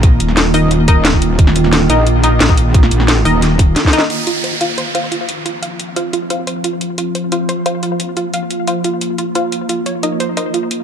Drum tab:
HH |x-----x-----x-----o-----x-----x-----x-----x-----|x-----x-----x-----x-----x-----x-----x-----x-----|x-----x-----x-----o-----x-----x-----x-----x-----|x-----x-----x-----x-----x-----x-----x-----x-----|
SD |---------o--o-----------------------o-----------|---o-----o--o-----------------------o-----------|---o-----o--o-----------o-----------o---o---o---|------------------------------------------------|
BD |o-----------------------------o--------o--------|o--------------------------------------o--------|o-----------------------------o--------o--------|------------------------------------------------|

HH |x-----x-----x-----x-----x-----x-----x-----x-----|x-----x-----x-----x-----x-----x-----x-----x-----|x-----x-----x-----x-----x-----x-----x-----x-----|x-----x-----x-----x-----x-----x-----x-----x-----|
SD |------------------------------------------------|------------------------------------------------|------------------------------------------------|------------------------------------------------|
BD |------------------------------------------------|------------------------------------------------|------------------------------------------------|------------------------------------------------|